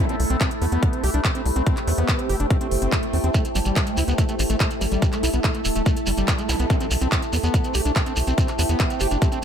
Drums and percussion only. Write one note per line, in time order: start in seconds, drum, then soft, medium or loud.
0.09 closed hi-hat medium
0.20 open hi-hat loud
0.30 closed hi-hat medium
0.41 kick loud
0.41 clap loud
0.41 closed hi-hat medium
0.51 closed hi-hat medium
0.62 open hi-hat medium
0.72 closed hi-hat medium
0.83 kick loud
0.83 closed hi-hat medium
0.93 closed hi-hat medium
1.04 open hi-hat loud
1.14 closed hi-hat medium
1.25 kick loud
1.25 clap loud
1.25 closed hi-hat medium
1.35 closed hi-hat medium
1.46 open hi-hat medium
1.56 closed hi-hat medium
1.67 kick loud
1.67 closed hi-hat medium
1.77 clap soft
1.77 closed hi-hat medium
1.87 open hi-hat loud
1.98 closed hi-hat medium
2.08 kick loud
2.08 clap loud
2.08 closed hi-hat medium
2.19 closed hi-hat medium
2.29 open hi-hat medium
2.40 closed hi-hat medium
2.50 kick loud
2.50 closed hi-hat medium
2.61 closed hi-hat medium
2.71 open hi-hat loud
2.82 closed hi-hat medium
2.92 kick loud
2.92 clap loud
2.92 closed hi-hat medium
3.03 closed hi-hat medium
3.13 open hi-hat medium
3.24 closed hi-hat medium
3.34 kick loud
3.34 closed hi-hat medium
3.34 shekere medium
3.45 closed hi-hat medium
3.45 shekere soft
3.55 open hi-hat loud
3.55 shekere loud
3.65 closed hi-hat medium
3.65 shekere soft
3.76 kick loud
3.76 clap loud
3.76 closed hi-hat medium
3.76 shekere soft
3.87 closed hi-hat medium
3.87 shekere soft
3.97 open hi-hat loud
3.97 shekere medium
4.08 closed hi-hat medium
4.08 shekere soft
4.18 kick loud
4.18 closed hi-hat medium
4.18 shekere medium
4.29 closed hi-hat medium
4.29 shekere soft
4.39 open hi-hat loud
4.39 shekere loud
4.50 closed hi-hat medium
4.50 shekere soft
4.60 kick loud
4.60 clap loud
4.60 closed hi-hat medium
4.60 shekere medium
4.71 closed hi-hat medium
4.71 shekere soft
4.81 open hi-hat medium
4.81 shekere medium
4.92 closed hi-hat medium
4.92 shekere soft
5.02 kick loud
5.02 closed hi-hat medium
5.02 shekere medium
5.12 clap soft
5.12 closed hi-hat medium
5.12 shekere soft
5.23 open hi-hat loud
5.23 shekere loud
5.33 closed hi-hat medium
5.33 shekere soft
5.44 kick loud
5.44 clap loud
5.44 closed hi-hat medium
5.44 shekere medium
5.54 closed hi-hat medium
5.54 shekere soft
5.65 open hi-hat loud
5.65 shekere loud
5.76 closed hi-hat medium
5.76 shekere soft
5.86 kick loud
5.86 closed hi-hat medium
5.86 shekere soft
5.97 closed hi-hat medium
5.97 shekere soft
6.06 open hi-hat loud
6.06 shekere medium
6.18 closed hi-hat medium
6.18 shekere soft
6.28 kick loud
6.28 clap loud
6.28 closed hi-hat medium
6.28 shekere soft
6.39 closed hi-hat medium
6.39 shekere soft
6.49 open hi-hat loud
6.49 shekere loud
6.59 closed hi-hat medium
6.59 shekere soft
6.70 kick loud
6.70 closed hi-hat medium
6.70 shekere medium
6.80 closed hi-hat medium
6.80 shekere soft
6.91 open hi-hat loud
6.91 shekere loud
7.01 closed hi-hat medium
7.01 shekere soft
7.12 kick loud
7.12 clap loud
7.12 closed hi-hat medium
7.12 shekere medium
7.22 closed hi-hat soft
7.22 shekere soft
7.33 open hi-hat loud
7.33 shekere medium
7.43 closed hi-hat soft
7.43 shekere soft
7.54 kick loud
7.54 closed hi-hat medium
7.54 shekere medium
7.64 closed hi-hat medium
7.64 shekere soft
7.74 open hi-hat loud
7.74 shekere loud
7.85 closed hi-hat medium
7.85 shekere soft
7.96 kick loud
7.96 clap loud
7.96 closed hi-hat medium
7.96 shekere medium
8.06 closed hi-hat soft
8.06 shekere soft
8.16 open hi-hat loud
8.16 shekere loud
8.27 closed hi-hat medium
8.27 shekere soft
8.38 kick loud
8.38 closed hi-hat medium
8.38 shekere medium
8.48 clap soft
8.48 closed hi-hat medium
8.48 shekere soft
8.59 open hi-hat loud
8.59 shekere loud
8.69 closed hi-hat medium
8.69 shekere soft
8.80 kick loud
8.80 clap loud
8.80 closed hi-hat medium
8.80 shekere medium
8.90 closed hi-hat soft
8.90 shekere soft
9.00 open hi-hat loud
9.00 shekere loud
9.11 closed hi-hat soft
9.11 shekere soft
9.22 kick loud
9.22 closed hi-hat medium
9.22 shekere medium
9.32 closed hi-hat medium
9.32 shekere soft